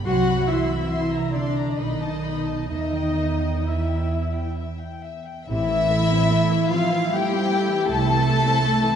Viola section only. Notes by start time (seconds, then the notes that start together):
0.05 F#4
0.47 E4
1.33 D4
1.78 D#4
2.69 D#4
3.66 E4
5.49 C3 E4
5.69 E3
5.90 A3
6.10 C4
6.30 A3
6.51 E3
6.71 C3
6.91 E3
7.11 A3
7.31 C4
7.51 A3
7.70 E3
7.88 C3
8.07 E3
8.26 A3
8.46 C4
8.64 A3
8.84 E3